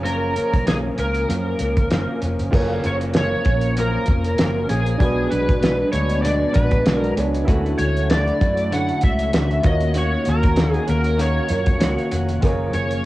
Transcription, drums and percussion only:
0.06 closed hi-hat medium
0.36 closed hi-hat medium
0.54 kick medium
0.54 closed hi-hat medium
0.67 snare loud
0.67 closed hi-hat medium
0.98 closed hi-hat medium
1.14 closed hi-hat soft
1.30 closed hi-hat medium
1.59 closed hi-hat medium
1.77 kick medium
1.77 closed hi-hat medium
1.90 snare loud
1.90 closed hi-hat medium
2.22 closed hi-hat medium
2.39 closed hi-hat soft
2.53 kick medium
2.53 crash medium
2.84 closed hi-hat medium
3.01 closed hi-hat soft
3.14 snare loud
3.14 closed hi-hat medium
3.45 kick medium
3.45 closed hi-hat medium
3.61 closed hi-hat soft
3.77 closed hi-hat medium
4.06 kick medium
4.06 closed hi-hat medium
4.24 closed hi-hat medium
4.38 snare loud
4.38 closed hi-hat loud
4.69 closed hi-hat medium
4.86 closed hi-hat soft
5.00 kick loud
5.00 closed hi-hat medium
5.31 closed hi-hat medium
5.49 kick medium
5.49 closed hi-hat soft
5.62 snare loud
5.62 closed hi-hat medium
5.93 closed hi-hat medium
6.09 closed hi-hat medium
6.25 closed hi-hat medium
6.54 kick medium
6.54 closed hi-hat medium
6.71 kick medium
6.71 closed hi-hat medium
6.86 snare loud
6.86 closed hi-hat loud
7.04 closed hi-hat soft
7.17 closed hi-hat medium
7.35 closed hi-hat medium
7.48 kick medium
7.48 closed hi-hat medium
7.66 closed hi-hat soft
7.79 closed hi-hat medium
7.97 closed hi-hat medium
8.10 snare loud
8.10 closed hi-hat medium
8.27 closed hi-hat soft
8.41 kick medium
8.41 closed hi-hat medium
8.57 closed hi-hat soft
8.72 closed hi-hat medium
8.89 closed hi-hat soft
9.01 kick medium
9.01 closed hi-hat medium
9.19 closed hi-hat medium
9.33 snare loud
9.33 closed hi-hat loud
9.51 closed hi-hat soft
9.63 kick loud
9.63 closed hi-hat medium
9.81 closed hi-hat soft
9.94 closed hi-hat medium
10.25 closed hi-hat medium
10.43 kick medium
10.43 closed hi-hat soft
10.56 snare loud
10.56 closed hi-hat medium
10.74 closed hi-hat soft
10.88 closed hi-hat medium
11.04 closed hi-hat soft
11.19 closed hi-hat medium
11.48 closed hi-hat medium
11.66 kick medium
11.66 closed hi-hat soft
11.80 snare loud
11.80 closed hi-hat loud
11.98 closed hi-hat soft
12.11 closed hi-hat medium
12.28 closed hi-hat soft
12.42 kick medium
12.42 closed hi-hat medium
12.73 closed hi-hat medium
12.91 closed hi-hat medium

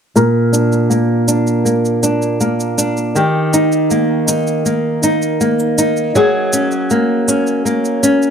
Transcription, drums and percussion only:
0.16 cabasa soft
0.54 cabasa medium
0.72 cabasa soft
0.91 cabasa soft
1.28 cabasa medium
1.47 cabasa soft
1.66 cabasa soft
1.85 cabasa soft
2.03 cabasa medium
2.22 cabasa soft
2.41 cabasa soft
2.60 cabasa soft
2.78 cabasa medium
2.97 cabasa soft
3.16 cabasa soft
3.54 cabasa medium
3.72 cabasa soft
3.90 cabasa soft
4.28 cabasa medium
4.47 cabasa soft
4.66 cabasa soft
5.03 cabasa medium
5.22 cabasa soft
5.41 cabasa soft
5.59 cabasa soft
5.78 cabasa medium
5.97 cabasa soft
6.15 cabasa soft
6.53 cabasa medium
6.71 cabasa soft
6.90 cabasa soft
7.28 cabasa medium
7.47 cabasa soft
7.66 cabasa soft
7.85 cabasa soft
8.03 cabasa medium
8.22 cabasa soft

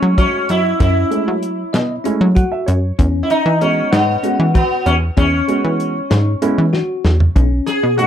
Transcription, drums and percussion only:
0.18 kick loud
0.18 closed hi-hat medium
0.49 closed hi-hat medium
0.80 kick loud
0.80 closed hi-hat medium
1.12 closed hi-hat soft
1.43 closed hi-hat medium
1.74 snare medium
1.74 closed hi-hat medium
2.05 closed hi-hat medium
2.36 kick medium
2.36 closed hi-hat medium
2.68 closed hi-hat medium
2.99 kick loud
2.99 closed hi-hat medium
3.30 closed hi-hat medium
3.61 closed hi-hat medium
3.93 snare loud
3.93 closed hi-hat medium
4.24 closed hi-hat medium
4.55 kick loud
4.55 closed hi-hat medium
4.86 closed hi-hat medium
5.17 kick loud
5.17 closed hi-hat medium
5.49 closed hi-hat medium
5.80 closed hi-hat soft
6.11 snare medium
6.11 closed hi-hat medium
6.42 closed hi-hat medium
6.73 snare medium
7.05 snare medium
7.20 floor tom medium
7.36 kick loud
7.36 closed hi-hat medium
7.67 snare soft
7.67 closed hi-hat medium
7.99 closed hi-hat medium

